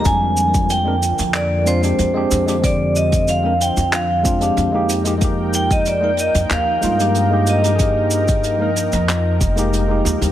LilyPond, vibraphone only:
\new Staff \with { instrumentName = "Vibraphone" } { \time 4/4 \key f \dorian \tempo 4 = 93 aes''4 g''4 d''8 c''4. | d''8 ees''8 f''8 g''8 f''4. r8 | r8 g''16 ees''16 d''8 ees''8 f''4. ees''8~ | ees''2.~ ees''8 r8 | }